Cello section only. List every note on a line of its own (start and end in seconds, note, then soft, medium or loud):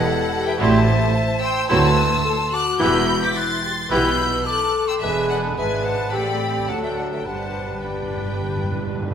0.60 1.06 A2 loud
1.70 2.17 D2 loud
2.80 3.27 E2 loud
3.91 4.37 B2 loud
5.02 5.54 E2 medium
5.58 6.13 G#2 medium
6.13 6.69 A2 medium
6.69 7.26 D2 medium
7.27 9.14 G2 medium